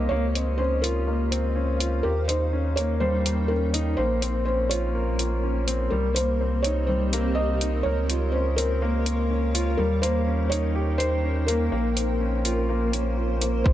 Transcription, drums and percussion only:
0.35 closed hi-hat soft
0.84 closed hi-hat medium
1.32 closed hi-hat medium
1.80 closed hi-hat medium
2.29 closed hi-hat medium
2.77 closed hi-hat medium
3.26 closed hi-hat medium
3.74 closed hi-hat medium
4.22 closed hi-hat medium
4.71 closed hi-hat medium
5.19 closed hi-hat medium
5.68 closed hi-hat medium
6.16 closed hi-hat medium
6.64 closed hi-hat medium
7.13 closed hi-hat medium
7.61 closed hi-hat medium
8.10 closed hi-hat medium
8.58 closed hi-hat medium
9.06 closed hi-hat medium
9.55 closed hi-hat medium
10.03 closed hi-hat medium
10.52 closed hi-hat soft
11.00 closed hi-hat medium
11.48 closed hi-hat medium
11.97 closed hi-hat medium
12.45 closed hi-hat medium
12.93 closed hi-hat medium
13.41 closed hi-hat medium
13.66 kick medium

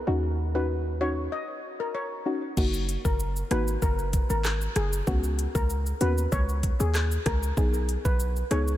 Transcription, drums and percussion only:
2.57 kick loud
2.57 crash loud
2.57 shaker medium
2.74 shaker medium
2.89 closed hi-hat medium
2.89 shaker medium
3.05 kick loud
3.05 shaker medium
3.20 shaker medium
3.36 shaker medium
3.51 cross-stick medium
3.51 closed hi-hat medium
3.51 shaker medium
3.68 shaker medium
3.82 kick loud
3.82 shaker medium
3.99 shaker medium
4.13 kick loud
4.13 closed hi-hat medium
4.13 shaker medium
4.30 shaker medium
4.44 cross-stick medium
4.44 clap medium
4.44 shaker medium
4.61 shaker medium
4.76 cross-stick medium
4.76 closed hi-hat medium
4.76 shaker medium
4.93 shaker medium
5.07 kick loud
5.07 shaker medium
5.24 shaker medium
5.39 closed hi-hat medium
5.39 shaker medium
5.55 kick medium
5.55 shaker medium
5.70 shaker medium
5.86 shaker medium
6.01 closed hi-hat medium
6.01 shaker medium
6.18 shaker medium
6.32 kick medium
6.32 shaker medium
6.49 shaker medium
6.63 kick medium
6.63 closed hi-hat medium
6.63 shaker medium
6.80 shaker medium
6.95 cross-stick medium
6.95 clap medium
6.95 shaker medium
7.11 shaker medium
7.26 kick medium
7.26 cross-stick loud
7.26 closed hi-hat medium
7.26 shaker medium
7.43 shaker medium
7.57 kick loud
7.57 shaker medium
7.74 shaker medium
7.89 closed hi-hat medium
7.89 shaker medium
8.05 kick loud
8.05 shaker medium
8.20 shaker medium
8.36 shaker medium
8.51 cross-stick medium
8.51 closed hi-hat medium
8.51 shaker medium
8.68 shaker medium

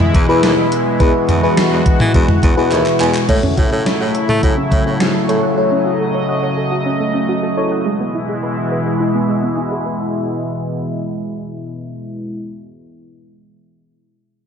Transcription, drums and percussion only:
0.00 mid tom loud
0.14 kick loud
0.14 closed hi-hat medium
0.43 snare loud
0.43 closed hi-hat medium
0.72 closed hi-hat medium
1.00 kick loud
1.00 closed hi-hat medium
1.29 closed hi-hat medium
1.29 mid tom loud
1.57 snare loud
1.57 closed hi-hat medium
1.86 kick loud
1.86 closed hi-hat medium
2.00 mid tom loud
2.14 kick loud
2.14 closed hi-hat medium
2.28 mid tom loud
2.43 kick loud
2.43 closed hi-hat medium
2.72 clap medium
2.72 closed hi-hat medium
2.86 clap medium
3.00 clap medium
3.00 closed hi-hat medium
3.15 clap loud
3.29 kick loud
3.29 closed hi-hat medium
3.29 crash medium
3.43 mid tom medium
3.57 kick medium
3.57 closed hi-hat medium
3.86 snare loud
3.86 closed hi-hat medium
4.15 closed hi-hat medium
4.29 mid tom medium
4.43 kick medium
4.43 closed hi-hat medium
4.72 kick medium
4.72 closed hi-hat medium
5.00 snare loud
5.00 closed hi-hat medium
5.29 closed hi-hat medium

